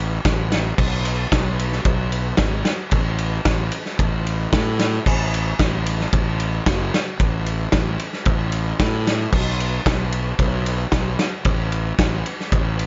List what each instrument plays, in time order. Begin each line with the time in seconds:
Already playing: fingered electric bass A1
0.25 fingered electric bass A1, kick, snare, ride
0.52 snare, ride
0.78 fingered electric bass B1, kick, crash
1.05 ride
1.32 fingered electric bass B1, kick, snare, ride
1.59 ride
1.72 snare
1.85 fingered electric bass B1, kick, ride
2.12 ride
2.37 fingered electric bass G#1, kick, snare, ride
2.65 snare, ride
2.91 fingered electric bass A1, kick, ride
3.18 ride
3.45 fingered electric bass A1, kick, snare, ride
3.72 ride
3.86 snare
3.99 fingered electric bass A1, kick, ride
4.27 ride
4.53 fingered electric bass A2, kick, snare, ride
4.79 snare, ride
5.06 fingered electric bass A1, kick, crash
5.34 ride
5.59 fingered electric bass A1, kick, snare, ride
5.86 ride
6.00 snare
6.13 fingered electric bass A1, kick, ride
6.40 ride
6.66 fingered electric bass F#1, kick, snare, ride
6.94 snare, ride
7.20 fingered electric bass A1, kick, ride
7.46 ride
7.72 fingered electric bass A1, kick, snare, ride
7.99 ride
8.13 snare
8.25 fingered electric bass A1, kick, ride
8.52 ride
8.80 fingered electric bass A2, kick, snare, ride
9.07 snare, ride
9.33 fingered electric bass B1, kick, crash
9.60 ride
9.86 fingered electric bass B1, kick, snare, ride
10.12 ride
10.39 fingered electric bass B1, kick, ride
10.66 ride
10.92 fingered electric bass B1, kick, snare, ride
11.19 snare, ride
11.45 fingered electric bass A1, kick, ride
11.72 ride
11.98 fingered electric bass A1, kick, snare, ride
12.26 ride
12.40 snare
12.52 fingered electric bass A1, kick, ride
12.79 ride